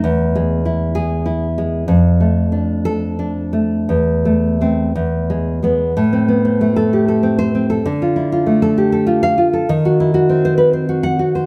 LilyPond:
\new Staff \with { instrumentName = "Nylon-string guitar" } { \time 6/8 \key a \minor \tempo 4. = 64 << { r4. gis'8. r8. | r4. a'8. r8. | r4 c'8 r4 b8 | r2 r16 c''8 r16 |
r2 r16 f''8 r16 | r2 r16 fis''8 r16 | } \\ { e,8 gis8 e'4 e'8 gis8 | f,8 a8 d'4 d'8 a8 | e,8 a8 a8 e,8 gis8 gis8 | a,16 c'16 b16 c'16 a16 a'16 g'16 a'16 c'8 c'16 a'16 |
d16 f'16 e'16 f'16 a16 a'16 g'16 a'16 f'8 f'16 a'16 | dis16 fis'16 e'16 fis'16 bis16 bis'16 b'16 bis'16 fis'8 fis'16 bis'16 | } >> }